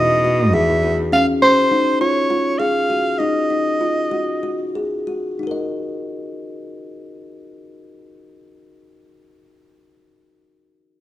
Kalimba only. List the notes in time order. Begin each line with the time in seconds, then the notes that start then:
Already playing: F#4
0.25 F#4
0.53 G#4
0.83 F#4
1.12 C#4
1.42 C#4
1.71 D#4
2.01 F4
2.30 F4
2.60 G#4
2.90 F#4
3.20 D#4
3.50 D#4
3.81 F4
4.11 F#4
4.43 F#4
4.75 G#4
5.07 F#4
5.39 D#4 F#4
5.47 A#4
5.51 D#5